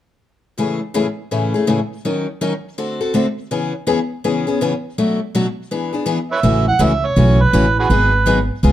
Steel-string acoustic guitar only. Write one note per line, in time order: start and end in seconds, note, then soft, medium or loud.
0.58 0.79 A2 medium
0.58 0.79 C#3 soft
0.58 0.79 E3 medium
0.58 0.79 A3 medium
0.58 0.79 C#4 medium
0.58 0.79 G#4 medium
0.94 1.05 A2 medium
0.94 1.05 C#3 medium
0.94 1.05 E3 medium
0.94 1.06 A3 medium
0.94 1.06 C#4 medium
0.94 1.06 G#4 medium
1.31 1.52 A2 soft
1.31 1.52 C#3 medium
1.31 1.53 E3 medium
1.31 1.52 A3 medium
1.31 1.53 C#4 medium
1.31 1.53 G#4 medium
1.54 1.66 E3 soft
1.54 1.66 A3 soft
1.54 1.67 C#4 soft
1.54 1.67 G#4 soft
1.67 1.79 A2 medium
1.67 1.78 C#3 medium
1.67 1.79 E3 medium
1.67 1.79 A3 medium
1.67 1.79 C#4 medium
1.67 1.79 G#4 medium
2.05 2.26 D#3 medium
2.05 2.26 F#3 medium
2.05 2.26 C#4 medium
2.05 2.26 D#4 medium
2.05 2.26 A#4 medium
2.41 2.52 D#3 medium
2.41 2.52 F#3 medium
2.41 2.52 C#4 medium
2.41 2.52 D#4 medium
2.41 2.52 A#4 medium
2.78 2.99 D3 medium
2.78 2.99 A3 soft
2.78 2.99 C4 medium
2.78 2.99 F#4 medium
2.78 2.99 A4 medium
3.01 3.13 C4 soft
3.01 3.13 F#4 soft
3.01 3.14 A4 soft
3.14 3.25 D3 medium
3.14 3.25 A3 medium
3.14 3.26 C4 medium
3.14 3.26 F#4 medium
3.14 3.26 A4 medium
3.51 3.72 C#3 medium
3.51 3.72 E3 medium
3.51 3.72 B3 medium
3.51 3.72 C#4 medium
3.51 3.72 G#4 medium
3.87 3.98 C#3 medium
3.87 3.98 E3 medium
3.87 3.98 B3 medium
3.87 3.99 C#4 medium
3.87 3.99 G#4 medium
4.24 4.45 C#3 medium
4.24 4.45 E3 medium
4.24 4.46 B3 medium
4.24 4.46 C#4 medium
4.24 4.46 G#4 medium
4.47 4.60 B3 soft
4.47 4.61 C#4 soft
4.47 4.60 G#4 soft
4.61 4.72 C#3 medium
4.61 4.72 E3 medium
4.61 4.72 B3 medium
4.61 4.72 C#4 medium
4.61 4.73 G#4 medium
4.98 5.19 B2 medium
4.98 5.19 F#3 medium
4.98 5.19 A3 medium
4.98 5.19 D4 medium
4.98 5.19 F#4 medium
5.35 5.45 B2 medium
5.35 5.46 F#3 medium
5.35 5.46 A3 medium
5.35 5.46 D4 medium
5.35 5.46 F#4 medium
5.71 5.92 E3 medium
5.71 5.92 B3 medium
5.71 5.92 D4 medium
5.71 5.91 G#4 medium
5.93 6.05 B3 soft
5.93 6.05 D4 soft
5.93 6.05 G#4 soft
6.06 6.18 E3 medium
6.06 6.18 B3 medium
6.06 6.18 D4 medium
6.06 6.18 G#4 medium
6.43 6.65 C#3 medium
6.43 6.65 E3 medium
6.43 6.65 A3 medium
6.43 6.65 C#4 medium
6.43 6.65 F#4 medium
6.79 6.91 C#3 medium
6.79 6.91 E3 medium
6.79 6.91 A3 medium
6.79 6.91 C#4 medium
6.79 6.91 F#4 medium
7.16 7.38 C#3 medium
7.16 7.38 E3 medium
7.16 7.38 A3 medium
7.16 7.38 C#4 medium
7.16 7.39 F#4 medium
7.53 7.65 C#3 medium
7.53 7.65 E3 medium
7.53 7.65 A3 medium
7.53 7.65 C#4 medium
7.53 7.65 F#4 medium
7.90 8.11 D#3 medium
7.90 8.12 F#3 medium
7.90 8.12 B3 medium
7.90 8.12 D#4 medium
7.90 8.12 G#4 medium
8.26 8.38 D#3 medium
8.26 8.38 F#3 medium
8.26 8.38 B3 medium
8.26 8.38 D#4 medium
8.26 8.38 G#4 medium
8.63 8.72 C#3 medium
8.63 8.72 G#3 medium
8.63 8.72 B3 medium
8.63 8.72 F4 medium
8.63 8.72 G#4 medium